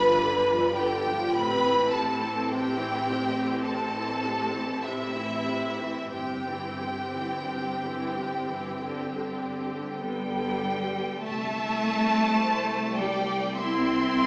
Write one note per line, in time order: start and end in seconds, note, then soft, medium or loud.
0.00 1.31 G1 medium
0.00 1.31 G2 medium
0.00 0.23 F3 medium
0.00 1.32 D4 medium
0.00 0.78 B4 loud
0.00 0.77 B5 loud
0.22 0.50 D3 medium
0.52 0.79 F3 medium
0.78 1.07 D3 medium
0.78 1.35 G4 medium
0.78 1.35 G5 medium
1.08 1.36 F3 medium
1.34 6.07 A1 medium
1.34 6.07 A2 medium
1.34 1.63 C3 medium
1.34 6.08 C4 medium
1.34 1.92 B4 medium
1.34 1.92 B5 loud
1.65 1.93 E3 medium
1.91 2.21 C3 medium
1.91 2.49 A4 medium
1.91 2.49 A5 medium
2.22 2.50 E3 medium
2.48 2.78 C3 medium
2.48 3.65 G4 medium
2.48 3.64 G5 medium
2.78 3.06 E3 medium
3.07 3.35 C3 medium
3.37 3.65 E3 medium
3.63 3.92 C3 medium
3.63 4.84 A4 medium
3.63 4.80 A5 medium
3.95 4.24 E3 medium
4.23 4.53 C3 medium
4.53 4.83 E3 medium
4.82 5.14 C3 medium
4.82 6.11 E4 medium
4.82 6.11 E5 medium
5.15 5.46 E3 medium
5.46 5.78 C3 medium
5.79 6.12 E3 medium
6.11 10.99 G1 medium
6.11 9.99 G2 medium
6.11 6.44 C3 medium
6.11 9.99 C4 medium
6.11 9.99 G4 medium
6.11 9.99 G5 medium
6.47 6.80 E3 medium
6.82 7.14 C3 soft
7.14 7.48 E3 soft
7.49 7.82 C3 medium
7.83 8.15 E3 medium
8.15 8.48 C3 medium
8.48 8.79 E3 soft
8.81 9.10 D3 medium
9.13 9.43 D3 soft
9.45 9.72 D3 soft
9.73 10.02 D3 medium
10.03 10.33 D3 soft
10.03 11.20 G3 medium
10.03 11.03 B3 medium
10.03 11.19 G5 medium
10.34 10.64 D3 medium
10.65 10.93 D3 medium
10.94 11.23 D3 soft
11.23 14.27 C2 medium
11.23 12.98 A3 loud
11.23 12.33 E5 medium
11.23 12.98 A5 loud
12.37 12.96 C5 medium
12.97 13.58 G3 medium
12.97 13.57 D5 medium
12.97 13.58 G5 medium
13.56 14.27 C4 loud
13.56 14.27 E4 loud
13.56 14.27 E5 medium
13.56 14.27 C6 loud